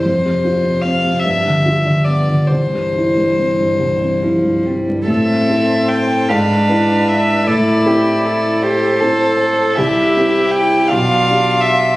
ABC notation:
X:1
M:6/8
L:1/16
Q:3/8=51
K:C
V:1 name="Violin"
c4 f2 e4 d2 | c8- c2 z2 | [K:Am] e4 g2 f4 e2 | d6 c6 |
e4 g2 f4 e2 |]
V:2 name="Violin"
z12 | z12 | [K:Am] C6 D6 | E6 G2 A2 A2 |
G6 F6 |]
V:3 name="Cello"
F,12 | E,6 E,2 F,2 G,2 | [K:Am] A6 B6 | A2 G2 A8 |
E6 D6 |]
V:4 name="Grand piano"
F,, C, F C, C C, G,, D, F D, B, D, | C,, G,, E G,, C G,, C,, C E G,, C G,, | [K:Am] A,,2 [CEA]4 ^G,,2 [DEB]4 | A,,2 [CEA]6 [CEA]4 |
C,,2 [CEG]4 B,,,2 [DG]4 |]